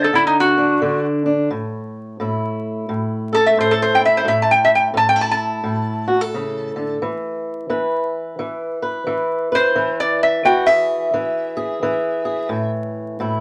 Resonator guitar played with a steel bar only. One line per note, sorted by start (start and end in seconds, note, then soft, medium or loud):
0.04 0.13 A4 medium
0.15 0.26 E4 medium
0.27 0.36 D#4 medium
0.40 1.05 F#4 loud
3.35 3.49 A4 medium
3.46 3.56 E5 medium
3.61 3.73 C5 medium
3.71 3.80 A4 medium
3.82 4.01 C5 medium
3.95 4.01 G5 medium
4.05 4.19 E5 medium
4.17 4.26 C5 medium
4.28 4.41 E5 medium
4.42 4.50 A5 medium
4.51 4.70 G5 medium
4.64 4.70 E5 medium
4.75 4.88 G5 medium
4.97 5.08 A5 medium
5.09 5.18 G5 medium
5.21 5.30 A5 medium
5.31 6.94 A5 loud
9.55 9.99 C5 loud
10.00 10.22 D5 medium
10.23 10.45 E5 medium
10.45 10.68 G5 medium
10.66 12.70 E5 medium